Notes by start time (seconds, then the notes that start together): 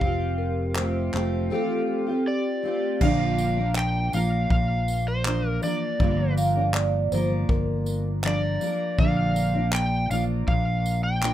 Already playing: F5
0.01 F1 C4 F4 G4, kick
0.38 A#4
0.76 A3 C4 F4 G4 C5, clap
1.13 F1 A3 C4 F4 G4, clap
1.50 F3 A3 C4 F4 G4 A4
2.07 C4 F4 G4
2.26 G4 D5
2.63 A3 C4 F4 G4
3.01 A#1 A#2 D3 F3 A#3 D4 A#4 F5, kick, crash
3.38 tambourine
3.57 F3 A#3 D4 A#4
3.75 G5, clap
4.12 A#1 F3 A#3 D4 A#4 F5, tambourine
4.50 A#1 F5, kick
4.88 tambourine
5.08 C5
5.24 F3 A#3 D4 A#4, clap
5.48 A#4
5.62 F3 A#3 D4 A#4 D5, tambourine
6.00 G1 G2 D3 F3 A#3 D4 A#4, kick
6.37 F5, tambourine
6.56 F3 A#3 D4 A#4
6.74 D5, clap
7.12 G1 F3 A#3 D4 A#4 C5, tambourine
7.49 G1 A#4, kick
7.86 tambourine
8.23 F3 A#3 D4 A#4 D5, clap
8.60 F3 A#3 D4 A#4, tambourine
8.98 A#1 A#2 D3 F3 A#3 D4 A#4 F5, kick
9.36 tambourine
9.54 F3 A#3 D4 A#4
9.73 G5, clap
10.10 A#1 F3 A#3 D4 A#4 F5, tambourine
10.47 A#1 F5, kick
10.86 tambourine
11.03 G5
11.21 F3 A#3 D4 A#4, clap